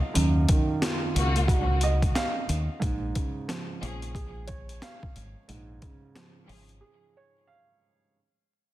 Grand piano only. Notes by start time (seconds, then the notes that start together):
Already playing: F#2 D#3 F#3 F4 D#5 F5
0.14 F#2
0.51 D#3
0.82 F4
1.47 F#4
1.83 D#5
2.15 F5
2.80 G#2
3.15 C#3
3.48 F3
4.15 G#4
4.47 C#5
4.82 F5
5.48 G#2
5.83 C#3
6.15 F3
6.81 G#4
7.17 C#5
7.47 F5